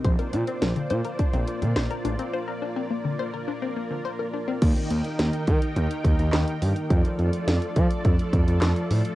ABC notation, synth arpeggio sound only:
X:1
M:4/4
L:1/16
Q:1/4=105
K:Eblyd
V:1 name="Synth arpeggio sound"
c B D C B, D, c B D C B, D, c B D C | c B D C B, D, c B D C B, D, c B D C | z16 | z16 |]